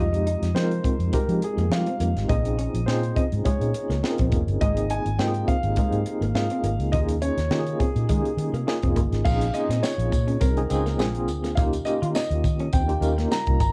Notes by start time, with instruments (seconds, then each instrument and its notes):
Already playing: fingered electric bass F2, tine electric piano C4 D#4, grand piano D#5
0.00 tine electric piano G#3 F4 G4
0.13 muted clean electric guitar stroke, closed hi-hat
0.27 clean electric guitar D#4, closed hi-hat
0.42 fingered electric bass F2, snare, closed hi-hat
0.54 fingered electric bass F3, tine electric piano G#3 C4 D#4 F4 A#4, grand piano C5, snare
0.71 closed hi-hat
0.84 clean electric guitar C4, kick, closed hi-hat
0.99 fingered electric bass F2, closed hi-hat
1.12 tine electric piano G#3 C4 D#4 F4 G4, clean electric guitar G#3, grand piano A#4, kick, closed hi-hat
1.28 fingered electric bass F3, closed hi-hat
1.42 grand piano G#4, muted clean electric guitar stroke, closed hi-hat
1.57 fingered electric bass F2, clean electric guitar A#3, closed hi-hat
1.70 fingered electric bass F3, tine electric piano G3 C4 D#4 F4 G4, grand piano F5, muted clean electric guitar stroke, snare
1.78 tine electric piano G#3
1.86 clean electric guitar C4, closed hi-hat
2.00 fingered electric bass F2, clean electric guitar A#3, closed hi-hat
2.16 fingered electric bass G#1, snare, closed hi-hat
2.29 fingered electric bass A#1, clean electric guitar A#3, tine electric piano C4 C#4 D#4 F4 G#4, grand piano D#5, kick, closed hi-hat
2.45 muted clean electric guitar stroke, closed hi-hat
2.59 clean electric guitar C#4, closed hi-hat
2.74 fingered electric bass A#1, closed hi-hat
2.86 fingered electric bass A#2, tine electric piano C4 C#4 D#4 F4 G#4, grand piano C5, snare
3.03 closed hi-hat
3.16 clean electric guitar C4, grand piano D#5, kick, closed hi-hat
3.32 fingered electric bass G#2, closed hi-hat
3.44 clean electric guitar G#3, tine electric piano A#3 C#4 D#4 F4 G#4, grand piano C#5, kick, closed hi-hat
3.60 fingered electric bass A#2, closed hi-hat
3.74 muted clean electric guitar stroke, closed hi-hat
3.89 fingered electric bass C#2, clean electric guitar A#3, snare, closed hi-hat
4.03 tine electric piano C4 C#4 D#4 F4 G#4, muted clean electric guitar stroke, snare
4.11 tine electric piano A#4
4.18 fingered electric bass A#1, clean electric guitar C4, kick, closed hi-hat
4.32 fingered electric bass F1, clean electric guitar A#3, kick, closed hi-hat
4.47 fingered electric bass G1, closed hi-hat
4.61 fingered electric bass G#1, clean electric guitar G#3, tine electric piano A#3 C4 D#4 F4 G#4, grand piano D#5, kick, closed hi-hat
4.77 muted clean electric guitar stroke, closed hi-hat
4.90 clean electric guitar D#4, grand piano G#5, closed hi-hat
5.06 fingered electric bass G#1, closed hi-hat
5.18 fingered electric bass G#2, tine electric piano A#3 C4 D#4 F4 G4, grand piano G5, snare
5.27 tine electric piano G#4
5.34 closed hi-hat
5.48 clean electric guitar C4, grand piano F5, kick, closed hi-hat
5.63 fingered electric bass G#1, closed hi-hat
5.76 clean electric guitar G#3, tine electric piano A#3 C4 D#4 F4 G#4, kick, closed hi-hat
5.92 fingered electric bass G#2, closed hi-hat
6.06 muted clean electric guitar stroke, closed hi-hat
6.21 fingered electric bass G#1, clean electric guitar A#3, closed hi-hat
6.35 fingered electric bass G#2, tine electric piano A#3 C4 D#4 F4 G#4, grand piano F5, muted clean electric guitar stroke, snare
6.50 clean electric guitar C4, closed hi-hat
6.63 fingered electric bass G#1, clean electric guitar A#3, closed hi-hat
6.79 fingered electric bass C#2, closed hi-hat
6.92 fingered electric bass D#2, tine electric piano A#3 C#4 D#4 F4 G4, clean electric guitar D#4, grand piano D#5, kick, closed hi-hat
7.01 tine electric piano G#4
7.09 muted clean electric guitar stroke, closed hi-hat
7.22 clean electric guitar C#4, grand piano C#5, closed hi-hat
7.37 fingered electric bass D#2, snare, closed hi-hat
7.51 fingered electric bass D#3, tine electric piano A#3 C#4 D#4 F4 G4, snare
7.59 tine electric piano G#4
7.67 closed hi-hat
7.79 clean electric guitar C4, grand piano G#4, kick, closed hi-hat
7.95 fingered electric bass A#2, closed hi-hat
8.09 fingered electric bass D#3, clean electric guitar G#3, tine electric piano A#3 C#4 D#4 F4 G#4, kick, closed hi-hat
8.25 closed hi-hat
8.37 fingered electric bass D#3, muted clean electric guitar stroke, closed hi-hat
8.53 fingered electric bass C3, clean electric guitar A#3, closed hi-hat
8.67 tine electric piano A#3 C#4 D#4 F4 G#4, muted clean electric guitar stroke, snare
8.82 fingered electric bass F1, clean electric guitar C4, kick, closed hi-hat
8.96 fingered electric bass G1, clean electric guitar A#3, kick, closed hi-hat
9.11 fingered electric bass G#1, snare, closed hi-hat
9.25 fingered electric bass A#1, clean electric guitar A#3, tine electric piano C4 C#4 D#4 F4 G#4, grand piano F5, kick, crash, tambourine
9.41 closed hi-hat, tambourine
9.54 tine electric piano A#3 C#4 D#4 F4 G#4, grand piano D#5, muted clean electric guitar stroke, closed hi-hat, tambourine
9.69 fingered electric bass A#2, clean electric guitar C4, snare, closed hi-hat
9.83 clean electric guitar D#4, grand piano C#5, snare, tambourine
9.98 fingered electric bass A#1, closed hi-hat
10.12 fingered electric bass A#2, muted clean electric guitar stroke, kick, closed hi-hat, tambourine
10.28 clean electric guitar C#4, closed hi-hat
10.41 fingered electric bass C2, clean electric guitar C4, grand piano A#4, kick, closed hi-hat, tambourine
10.57 tine electric piano C4 C#4 D#4 F4 G#4, closed hi-hat
10.69 fingered electric bass C#2, tine electric piano C4 C#4 D#4 F4 G#4, muted clean electric guitar stroke, closed hi-hat, tambourine
10.86 clean electric guitar A#3, snare, closed hi-hat, tambourine
10.98 fingered electric bass A#1, clean electric guitar G#3, tine electric piano A#3 C4 D4 F4 G#4, snare, tambourine
11.15 closed hi-hat
11.28 fingered electric bass D2, muted clean electric guitar stroke, closed hi-hat, tambourine
11.44 clean electric guitar A#3, snare, closed hi-hat, tambourine
11.55 fingered electric bass D#2, tine electric piano A#3 C#4 D#4 F4 G4, clean electric guitar D#4, grand piano F5, kick, closed hi-hat, tambourine
11.73 closed hi-hat, tambourine
11.85 tine electric piano A#3 C#4 D#4 F4 G4, grand piano D#5, muted clean electric guitar stroke, closed hi-hat, tambourine
12.02 fingered electric bass D#3, clean electric guitar F4, closed hi-hat
12.15 clean electric guitar D#4, grand piano D#5, snare, tambourine
12.30 fingered electric bass D#2, closed hi-hat
12.44 fingered electric bass D#3, muted clean electric guitar stroke, kick, closed hi-hat, tambourine
12.59 clean electric guitar C#4, closed hi-hat
12.73 fingered electric bass D#2, clean electric guitar C4, grand piano G5, kick, closed hi-hat, tambourine
12.88 tine electric piano A#3 C#4 D#4 F4 G4, closed hi-hat
13.01 fingered electric bass D#2, tine electric piano A#3 C#4 D#4 F4 A#4, muted clean electric guitar stroke, closed hi-hat, tambourine
13.18 clean electric guitar A#3, snare, closed hi-hat
13.31 clean electric guitar G3, grand piano A#5, snare, tambourine
13.47 fingered electric bass C2, kick, closed hi-hat
13.60 fingered electric bass G#1, grand piano A#5, muted clean electric guitar stroke, kick, closed hi-hat, tambourine